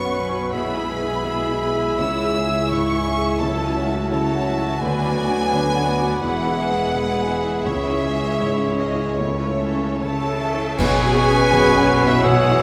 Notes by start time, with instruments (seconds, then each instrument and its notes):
Already playing: felt piano B1 F#2 C#4 F#4, double bass section B1, harp B2 C#4 B4 C#5, cello section B2, french horn section F#3 B4, viola section B3, clarinet F#4, cor anglais B4, violin section C#5 C#6
0.05 felt piano C#4, harp F#5
0.17 viola section F#3 C#4, violin section B4
0.29 felt piano F#4, harp C#5
0.52 felt piano B1, harp B2, french horn section G#3 E4, viola section B3 E4, violin section G#4 E5 B5, clarinet G#4, cor anglais E5
0.77 harp E4, felt piano G#4
0.90 viola section G#3 G#4, violin section B4 G#5
1.01 felt piano E4, harp B4
1.24 felt piano B2, viola section B3 E4, violin section G#4 E5, harp E5
1.48 felt piano E4, harp G#5
1.62 viola section G#3 G#4, violin section B4 G#5
1.74 felt piano G#4, harp E5
1.99 felt piano C#2, double bass section C#2, cello section C#2, harp C#3, viola section E3 E4, violin section E4 C#5 E6
2.24 harp E4, felt piano G#4
2.35 viola section G#3 C#4, violin section G#4 E5
2.47 felt piano E4, harp G#4
2.71 felt piano G#2, viola section E3 E4, violin section E4 C#5 C#6, harp E5
2.94 felt piano E4, harp G#5
3.07 viola section G#3 C#4, violin section G#4 E5
3.17 felt piano G#4, harp E5
3.40 felt piano C#2, harp C#3, french horn section F#3, viola section F#3 E4, clarinet F#4, violin section A4 C#5 A5
3.64 harp E4, felt piano F#4
3.77 viola section A3 C#4, violin section F#4 E5
3.87 felt piano E4, harp A4
4.11 felt piano C#3, viola section F#3 E4, violin section A4 C#5 A5, harp E5
4.35 felt piano E4, harp F#5
4.46 viola section A3 C#4, violin section F#4 E5
4.59 felt piano F#4, harp E5
4.81 felt piano D2, double bass section D2, cello section D2, viola section D3 D4, harp D3, french horn section F#3 B3, violin section D4 B4 G#5, cor anglais B4
5.05 harp D4, felt piano F#4
5.16 viola section F#3 B3, violin section F#4 D5
5.28 felt piano D4, harp B4
5.50 viola section D3 D4, felt piano D3, violin section D4 B4, harp D5
5.75 felt piano D4, harp F#5
5.85 viola section F#3 B3, violin section F#4 D5
5.99 felt piano F#4, harp D5
6.21 double bass section E1, felt piano E2, cello section E2, harp E3, viola section G#3 B3, french horn section G#3 B3, violin section E4 B4 F#5, clarinet G#4
6.47 harp E4, felt piano E4
6.58 viola section E3 G#3, violin section G#4 E5
6.70 felt piano B3, harp B4
6.93 felt piano B2, viola section G#3 B3, violin section E4 B4
7.19 felt piano B3, harp G#5
7.30 viola section E3 G#3, violin section G#4 E5
7.42 felt piano E4, harp B4
7.66 double bass section C#2, felt piano C#2, cello section C#2, harp C#3, viola section G#3 E4, french horn section G#3 C#4, violin section E4 C#5 E5, cor anglais C#5
7.90 harp C#4, felt piano E4
8.03 viola section E3 C#4, violin section G#4 E5
8.15 felt piano C#4, harp G#4
8.40 felt piano G#2, viola section G#3 E4, violin section E4 C#5, harp C#5
8.67 felt piano C#4
8.78 viola section E3 C#4, violin section G#4 D#5 E5
8.92 felt piano E4, harp C#5
9.18 felt piano C#2, harp C#3, french horn section A3 C#4, viola section A3 E4, clarinet A4, violin section C#5
9.45 harp C#4, felt piano E4
9.59 viola section E3 C#4, violin section A4 E5
9.73 felt piano C#4, harp A4
10.00 felt piano C#3, viola section A3 E4 A4, violin section C#5 A5, harp C#5
10.28 felt piano C#4, harp E5
10.40 viola section E3 C#4, violin section A4 E5
10.54 felt piano E4, harp C#5
10.78 double bass section B1, felt piano B1, cello section B2, harp B2, timpani B2, french horn section F#3 C#4, violin section B3 F#4 G#5, viola section G#4, clarinet B4, cor anglais C#5, flute C#6, concert bass drum, crash
10.96 violin section C#4 B4
11.04 harp C#4, felt piano F#4
11.15 violin section B3 F#4
11.28 felt piano C#4, harp B4
11.32 violin section C#4 B4
11.51 felt piano F#2, violin section B3 F#4, cor anglais B4, harp C#5
11.69 violin section C#4 B4
11.77 felt piano C#4, harp F#5
11.88 violin section B3 F#4
12.01 felt piano F#4, harp C#5
12.07 violin section C#4 B4 E5, viola section E4
12.22 felt piano B1, harp B2, timpani B2, french horn section E3 G#3, violin section B3 E4 F#5, viola section F#4, cor anglais G#4, clarinet C#5, flute E6
12.43 violin section G#3 G#4
12.48 harp E3, felt piano E4